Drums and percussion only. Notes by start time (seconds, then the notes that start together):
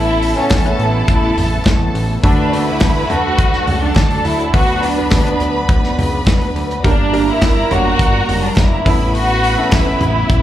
0.22 hi-hat pedal, open hi-hat
0.37 open hi-hat
0.50 kick, snare, clap, hi-hat pedal, open hi-hat
0.65 hi-hat pedal
0.80 hi-hat pedal, open hi-hat
1.08 kick, hi-hat pedal, open hi-hat
1.38 floor tom, hi-hat pedal, open hi-hat
1.65 kick, snare, clap, hi-hat pedal, open hi-hat
1.95 hi-hat pedal, open hi-hat
2.23 kick, hi-hat pedal, open hi-hat
2.53 hi-hat pedal, open hi-hat
2.81 kick, snare, clap, hi-hat pedal, open hi-hat
3.10 floor tom, hi-hat pedal, open hi-hat
3.38 kick, hi-hat pedal, open hi-hat
3.53 snare
3.67 floor tom, hi-hat pedal, open hi-hat
3.96 kick, snare, clap, hi-hat pedal, open hi-hat
4.11 open hi-hat
4.25 hi-hat pedal, open hi-hat
4.39 hi-hat pedal
4.54 kick, hi-hat pedal, open hi-hat
4.83 hi-hat pedal, open hi-hat
4.97 open hi-hat
5.11 kick, snare, clap, hi-hat pedal, open hi-hat
5.26 hi-hat pedal
5.40 hi-hat pedal, open hi-hat
5.69 kick, hi-hat pedal, open hi-hat
5.84 snare
5.99 floor tom, hi-hat pedal, open hi-hat
6.26 kick, snare, clap, hi-hat pedal, open hi-hat
6.41 open hi-hat
6.56 hi-hat pedal, open hi-hat
6.71 hi-hat pedal
6.84 kick, hi-hat pedal, open hi-hat
7.13 hi-hat pedal, open hi-hat
7.42 kick, snare, clap, hi-hat pedal, open hi-hat
7.71 floor tom, hi-hat pedal, open hi-hat
7.99 kick, hi-hat pedal, open hi-hat
8.29 floor tom, hi-hat pedal, open hi-hat
8.56 kick, snare, clap, hi-hat pedal, open hi-hat
8.86 kick, hi-hat pedal, open hi-hat
9.15 hi-hat pedal, open hi-hat
9.43 hi-hat pedal, open hi-hat
9.72 kick, snare, clap, hi-hat pedal, open hi-hat
10.01 floor tom, hi-hat pedal, open hi-hat
10.30 kick, hi-hat pedal, open hi-hat